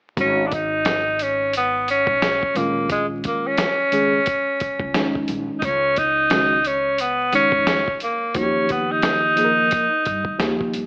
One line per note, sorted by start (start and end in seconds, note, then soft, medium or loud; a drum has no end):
0.17 2.04 G#1 loud
0.17 0.43 D#3 medium
0.17 0.43 G#3 medium
0.17 0.43 C#4 medium
0.17 0.49 C#4 loud
0.17 0.44 F#4 medium
0.17 kick medium
0.17 closed hi-hat medium
0.47 0.56 D4 medium
0.52 1.24 D#4 loud
0.52 kick medium
0.52 closed hi-hat medium
0.85 snare medium
0.85 closed hi-hat medium
1.19 1.55 C#4 medium
1.19 closed hi-hat medium
1.53 1.87 B3 medium
1.53 closed hi-hat medium
1.88 2.59 C#4 loud
1.88 closed hi-hat medium
2.07 2.39 B1 medium
2.07 kick medium
2.22 snare loud
2.22 closed hi-hat medium
2.43 kick medium
2.55 3.20 A#1 medium
2.55 3.66 D#3 medium
2.55 3.66 G#3 medium
2.55 2.91 A#3 medium
2.55 3.66 C#4 medium
2.55 3.67 F4 medium
2.55 closed hi-hat medium
2.90 3.06 G#3 medium
2.90 kick loud
2.90 closed hi-hat medium
3.24 3.49 A#3 medium
3.24 kick medium
3.24 closed hi-hat medium
3.47 5.30 C#4 medium
3.57 snare medium
3.57 closed hi-hat medium
3.92 4.18 D#3 medium
3.92 4.18 G#3 medium
3.92 4.18 C#4 medium
3.92 4.19 G#4 medium
3.92 closed hi-hat medium
4.26 kick medium
4.26 closed hi-hat medium
4.60 kick medium
4.60 closed hi-hat medium
4.79 4.93 C#2 medium
4.79 kick medium
4.94 5.62 D#3 medium
4.94 5.63 G#3 medium
4.94 5.63 C#4 medium
4.94 5.63 D#4 medium
4.94 snare loud
4.94 closed hi-hat medium
5.15 kick medium
5.28 5.47 A#1 medium
5.28 closed hi-hat medium
5.59 7.49 C#2 medium
5.59 5.66 D#4 medium
5.59 kick loud
5.59 closed hi-hat medium
5.65 6.00 C#4 loud
5.96 6.68 D#4 loud
5.96 kick medium
5.96 closed hi-hat medium
6.30 6.56 D#3 medium
6.30 6.56 G#3 medium
6.30 6.57 C#4 medium
6.30 6.57 F#4 medium
6.30 snare medium
6.30 closed hi-hat medium
6.64 7.03 C#4 medium
6.64 closed hi-hat medium
6.98 7.34 B3 medium
6.98 closed hi-hat medium
7.32 7.83 D#3 medium
7.32 7.83 G#3 medium
7.32 7.84 C#4 medium
7.32 7.98 C#4 loud
7.32 7.84 D#4 medium
7.32 closed hi-hat medium
7.52 7.84 F2 medium
7.52 kick medium
7.67 snare loud
7.67 closed hi-hat medium
7.88 kick medium
8.00 8.39 A#3 medium
8.00 closed hi-hat medium
8.34 9.68 D#2 medium
8.34 9.32 F3 medium
8.34 9.32 A#3 medium
8.34 8.73 C#4 loud
8.34 9.32 D#4 medium
8.34 8.44 F#4 medium
8.34 kick loud
8.34 closed hi-hat medium
8.43 9.36 G4 medium
8.69 8.93 B3 medium
8.69 kick medium
8.69 closed hi-hat medium
8.92 10.75 D#4 loud
9.02 snare medium
9.02 closed hi-hat medium
9.36 9.87 F3 medium
9.36 9.88 A#3 medium
9.36 9.88 D#4 medium
9.36 9.46 G#4 medium
9.36 closed hi-hat medium
9.44 9.91 A#4 medium
9.71 kick medium
9.71 closed hi-hat loud
10.05 10.24 G2 medium
10.05 kick medium
10.05 closed hi-hat medium
10.25 10.38 D#2 medium
10.25 kick medium
10.38 10.71 D#2 loud
10.38 10.81 F3 medium
10.38 10.82 A#3 medium
10.38 10.82 D#4 medium
10.38 10.82 G4 medium
10.38 snare medium
10.38 closed hi-hat medium
10.61 kick medium
10.73 10.87 G1 medium
10.73 closed hi-hat medium